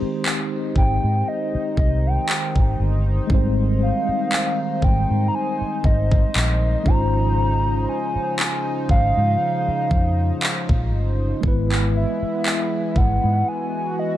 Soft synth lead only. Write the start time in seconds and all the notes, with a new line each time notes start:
0.77 G5
1.28 D#5
1.79 D#5
2.06 G5
3.82 F5
4.84 G5
5.28 A#5
5.35 G#5
5.85 D#5
6.87 A#5
7.89 G#5
8.40 G#5
8.91 F5
11.96 E5
12.97 F#5
13.48 G#5
13.99 D#5